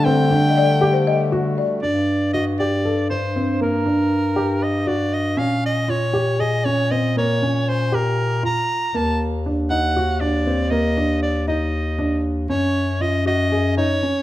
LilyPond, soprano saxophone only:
\new Staff \with { instrumentName = "Soprano saxophone" } { \time 7/8 \key g \minor \tempo 4 = 118 g''2~ g''8 r4 | d''4 ees''8 d''4 c''4 | bes'2 ees''8 d''8 ees''8 | f''8 ees''8 des''4 ees''8 des''8 ees''8 |
des''4 c''8 bes'4 bes''4 | a''8 r4 ges''4 d''4 | ees''4 d''8 ees''4. r8 | cis''4 ees''8 ees''4 cis''4 | }